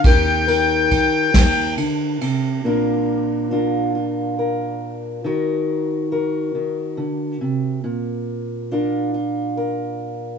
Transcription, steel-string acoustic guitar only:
\new Staff \with { instrumentName = "Steel-string acoustic guitar" } { \time 6/8 \key bes \major \tempo 4. = 46 << { <g' bes'>8 bes'2~ bes'8 | <bes d' f' bes'>4 <d' f' bes'>8 f'8 bes'4 | <ges' bes'>4 <ges' bes'>2 | r4 <d' f' bes'>8 f'8 bes'4 | } \\ { ees4. ees8 d8 c8 | bes,2. | ees4. ees8 d8 c8 | bes,2. | } >> }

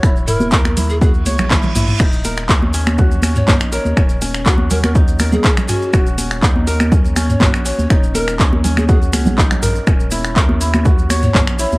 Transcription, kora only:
\new Staff \with { instrumentName = "Kora" } { \time 4/4 \key ees \phrygian \tempo 4 = 122 fes'16 r16 fes'8 bes'8 fes'8 ges'16 r16 des''8 fes'16 r16 fes'8 | ees'16 r16 bes'8 des'16 r16 des'8 ges'8 des'8 ees'16 r16 bes'8 | des'16 r16 des'8 ges'8 des'8 ees'16 r16 bes'8 des'16 r16 des'8 | ges'8 des'8 ees'16 r16 bes'8 des'16 r16 des'8 ges'8 des'8 |
ees'16 r16 bes'8 des'16 r16 des'8 ges'8 des'8 ees'16 r16 bes'8 | des'8 fes'8 bes'8 fes'8 ges'16 r16 des''8 des'8 fes'8 | }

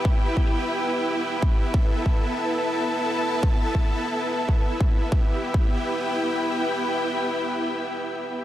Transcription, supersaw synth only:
\new Staff \with { instrumentName = "Supersaw synth" } { \time 4/4 \key e \minor \tempo 4 = 142 << { <b g' e''>1 | <b a' e''>1~ | <b a' e''>1 | <b e' g' e''>1~ |
<b e' g' e''>1 | } \\ { e'1~ | e'1~ | e'1 | r1 |
r1 | } >> }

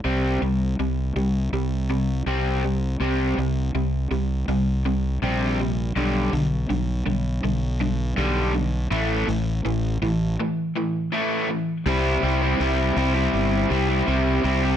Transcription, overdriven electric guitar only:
\new Staff \with { instrumentName = "Overdriven electric guitar" } { \clef bass \time 4/4 \key c \major \tempo 4 = 81 <c g c'>8 <c g>8 <c g>8 <c g>8 <c g>8 <c g>8 <c g c'>8 <c g>8 | <c g c'>8 <c g>8 <c g>8 <c g>8 <c g>8 <c g>8 <c g c'>8 <c g>8 | <g, d g>8 <g, d>8 <g, d>8 <g, d>8 <g, d>8 <g, d>8 <g, d g>8 <g, d>8 | <a, e a>8 <a, e>8 <a, e>8 <a, e>8 <a, e>8 <a, e>8 <a, e a>8 <a, e>8 |
<c g c' e'>8 <c g c' e'>16 <g c' e'>16 <c g c' e'>8 <c g c' e'>16 <g c' e'>8. <c g c' e'>16 <g c' e'>16 <c g c' e'>8 <c g c' e'>16 <g c' e'>16 | }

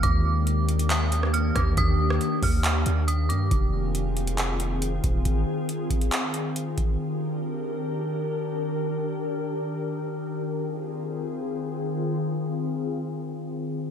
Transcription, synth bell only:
\new Staff \with { instrumentName = "Synth bell" } { \time 4/4 \key f \dorian \tempo 4 = 138 d'''2 ees'''4 f'''8 d'''8 | ees'''4. f'''4. ees'''8 d'''8 | r1 | r1 |
r1 | r1 | r1 | r1 | }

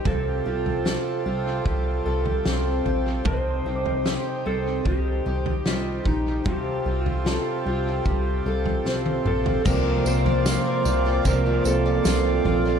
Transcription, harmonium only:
\new Staff \with { instrumentName = "Harmonium" } { \time 4/4 \key f \mixolydian \tempo 4 = 75 << { <c g' a'>1 | ees'1 | <c g' a'>1 | <c bes c' f'>1 | } \\ { <c' f'>1~ | <c' f'>1 | f'1 | d''1 | } >> }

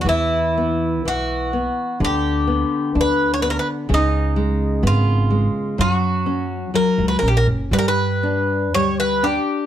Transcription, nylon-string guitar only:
\new Staff \with { instrumentName = "Nylon-string guitar" } { \time 2/4 \key e \dorian \tempo 4 = 63 e8 b8 e8 b8 | d8 b8 d'8 b8 | cis8 gis8 b8 gis8 | fis8 cis'8 fis8 cis'8 |
g8 d'8 g8 d'8 | }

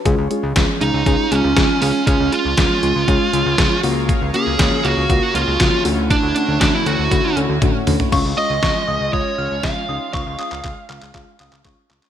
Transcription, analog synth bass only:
\new Staff \with { instrumentName = "Analog synth bass" } { \clef bass \time 4/4 \key cis \mixolydian \tempo 4 = 119 cis,16 cis,16 r16 cis,16 cis,16 r16 cis,16 cis,16 cis,16 r16 cis,16 cis,16 cis,16 r16 cis,16 r16 | cis,16 cis,16 r16 cis,16 cis,16 r16 cis,16 cis,16 cis,16 r16 cis,16 cis,16 cis,16 r16 cis,8~ | cis,16 cis,16 r16 cis,16 cis,16 r16 cis,16 cis,16 cis,16 r16 cis,16 cis,16 cis,16 r16 d,8~ | d,16 d,16 r16 d,16 d,16 r16 d,16 d,16 d,16 r16 d,16 d,16 d,16 r16 d,16 r16 |
cis,16 cis,16 r16 cis,16 cis,16 r16 cis,16 cis,16 cis,16 r16 cis,16 cis,16 cis,16 r16 cis,16 r16 | cis,16 cis,16 r16 cis,16 cis,16 r16 cis,16 cis,16 cis,16 r16 cis,16 cis,16 cis,16 r16 cis,16 r16 | }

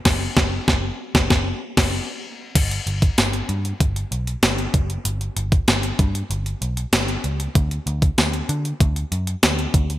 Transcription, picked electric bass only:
\new Staff \with { instrumentName = "Picked electric bass" } { \clef bass \time 4/4 \key g \lydian \tempo 4 = 96 fis,,8 fis,,8 fis,,8 r16 fis,,16 fis,,8 r16 fis,,8 r8. | g,,8 g,,8 g,,8 g,8 g,,8 b,,8 g,,8 fis,,8 | g,,8 g,,8 g,,8 g,8 g,,8 b,,8 g,,8 cis,8 | d,8 d,8 d,8 d8 d,8 fis,8 d,8 d,8 | }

